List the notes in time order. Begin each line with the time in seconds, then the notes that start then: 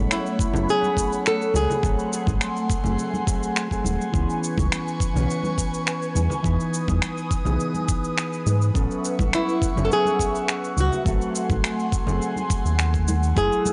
Already playing: F#3 A3 B3 C#4 A4 C#5 F#5 B5
0.11 E4, finger snap, shaker
0.26 shaker
0.39 kick, shaker
0.53 F#1 F#3 B3 C#4 C#5, low conga, shaker
0.69 G#4, shaker
0.83 high conga, shaker
0.97 kick, shaker
1.13 shaker
1.26 A4, finger snap, shaker
1.42 shaker
1.54 C#2 G#4, high conga, shaker
1.70 low conga, shaker
1.82 G#1 F#3 A3 C4 A4 G#5 C6, kick, shaker
1.99 shaker
2.13 shaker
2.27 G#1, kick, high conga, shaker
2.41 finger snap, shaker
2.57 shaker
2.70 kick, shaker
2.84 F#1 F#3 A3 C4 G#4, low conga, shaker
2.99 shaker
3.14 high conga, shaker
3.26 F#3 A3 C4 G#4, kick, shaker
3.43 shaker
3.56 finger snap, shaker
3.70 F#3 A3 C4 G#4, kick, shaker
3.85 D#1, high conga, shaker
4.01 shaker
4.12 C#2 E3 B3 C#4 G#4 B4 C#6, kick, shaker
4.30 shaker
4.44 shaker
4.57 C#2, kick, high conga, shaker
4.72 finger snap, shaker
4.88 shaker
5.00 kick, shaker
5.13 B1 E3 B3 C#4 C#5, low conga, shaker
5.30 shaker
5.43 high conga, shaker
5.58 kick, shaker
5.74 shaker
5.87 finger snap, shaker
6.02 shaker
6.15 E2, high conga, shaker
6.30 low conga, shaker
6.43 E2 E3 B3 D#4 B4 D#6, kick, shaker
6.60 shaker
6.74 shaker
6.88 E2, kick, high conga, shaker
7.02 finger snap, shaker
7.18 shaker
7.31 kick, shaker
7.44 B1 E3 B3 D#4 G#4, low conga, shaker
7.60 shaker
7.75 high conga, shaker
7.89 kick, shaker
8.04 shaker
8.18 finger snap, shaker
8.33 shaker
8.46 G#2, high conga, shaker
8.62 shaker
8.74 A1 F#3 B3 C#4 A4 E5 F#5 C#6, kick, shaker
8.91 shaker
9.05 shaker
9.19 A1, kick, high conga, shaker
9.33 E4, finger snap, shaker
9.49 shaker
9.62 kick, shaker
9.75 F#1 F#3 B3 C#4 C#5, low conga, shaker
9.85 A4
9.91 G#4, shaker
10.05 high conga, shaker
10.19 kick, shaker
10.35 shaker
10.48 finger snap, shaker
10.64 shaker
10.77 C#2 F#4, high conga, shaker
10.92 low conga, shaker
11.04 G#1 F#3 A3 C4 A4 G#5 C6, kick, shaker
11.22 shaker
11.35 shaker
11.49 G#1, kick, high conga, shaker
11.64 finger snap, shaker
11.79 shaker
11.92 kick, shaker
12.06 F#1 F#3 A3 C4 G#4, low conga, shaker
12.22 shaker
12.36 high conga, shaker
12.50 kick, shaker
12.65 D#2, shaker
12.79 finger snap, shaker
12.94 kick, shaker
13.08 high conga, shaker
13.23 shaker
13.35 F#1 F#3 A3 E4 G#4 F#5 G#5 E6, kick, shaker
13.52 shaker
13.66 muted conga, high conga, shaker